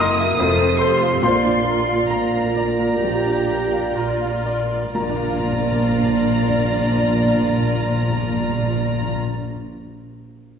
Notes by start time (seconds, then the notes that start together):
Already playing: F#1 F#2 A#3 A#4 F#5 A#5
0.00 A#3 E4 A#4 D#5 C6 D#6
0.20 E5
0.39 F1 F2 A3 F4 A4 C5
0.60 C4
0.79 A3 F4 G4 A4 C5 C6
1.02 F5
1.21 A#1 A#2 A#3 F4 C5 D5 F5 C6
1.44 D4
1.66 A#3 F4 A#4 D5
1.89 F5
2.10 A#1 A#2 A#3 A#4 F5 A#5
2.33 F5
2.56 D5
2.80 A#4
3.03 A#1 A#2 F3 G4
3.26 D4
3.50 A#4 D5
3.73 F5
3.96 A#1 A#2 F4 A#5
4.21 F5
4.46 D5
4.70 A#4
4.93 A#1 A#2 F3 A#3 D4 F4 A#4 D5 A#5
5.01 A#2 A#3
5.08 A#2 D4
5.14 A#2 F4
5.21 A#2 A#4
5.27 A#2 F5
5.33 A#2
5.39 A#2
5.46 A#2
5.52 A#2
5.59 A#2
5.65 A#2
5.72 A#2
5.78 A#2
5.84 A#2
5.90 A#2
5.97 A#2
6.03 A#2
6.10 A#2
6.17 A#2
6.24 A#2
6.30 A#2
6.36 A#2
6.43 A#2
6.50 A#2
6.57 A#2
6.64 A#2
6.70 A#2
6.76 A#2
6.83 A#2
6.90 A#2
6.96 A#2
7.03 A#2
7.09 A#2
7.16 A#2
7.23 A#2
7.30 A#2
7.36 A#2
7.43 A#2
7.49 A#2
7.56 A#2
7.62 A#2
7.68 A#2
7.75 A#2
7.82 A#2
7.89 A#2
7.95 A#2
8.02 A#2
8.09 A#2
8.16 A#2
8.23 A#2
8.30 A#2
8.36 A#2
8.42 A#2
8.49 A#2
8.56 A#2
8.63 A#2
8.69 A#2
8.76 A#2
8.82 A#2
8.88 A#2
8.95 A#2
9.02 A#2
9.08 A#2
9.14 A#2